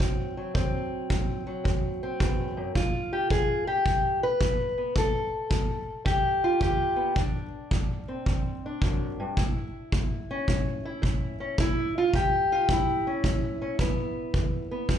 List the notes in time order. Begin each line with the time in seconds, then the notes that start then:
Already playing: F#3 C4
0.00 D2, kick
0.37 F#3
0.54 D2 C4, kick
1.10 D2, kick
1.47 F#3
1.64 D2, kick
2.03 C4
2.20 E2, kick
2.57 F#2
2.75 G2 F4, kick
3.13 G4
3.30 G2 G#4, kick
3.67 G4
3.86 G2, kick
4.23 B4
4.41 G2, kick
4.78 B3
4.96 G2 A4, kick
5.50 G2, kick
6.05 G2 G4, kick
6.44 F4
6.60 G2 G4, kick
6.96 B3
7.15 D2 D4, kick
7.71 D2, kick
8.08 C4
8.26 D2, kick
8.66 D4
8.82 F#2, kick
9.20 G2
9.37 A2 E4, kick
9.92 A2, kick
10.31 C#4
10.48 A2, kick
10.85 E4
11.02 A2, kick
11.40 C#4
11.58 A2 E4, kick
11.98 F4
12.14 A2 G4, kick
12.52 F4
12.69 A2 E4, kick
13.07 C#4
13.24 A2, kick
13.62 C#4
13.79 G2 B3, kick
14.34 G2, kick
14.71 B3
14.89 G2, kick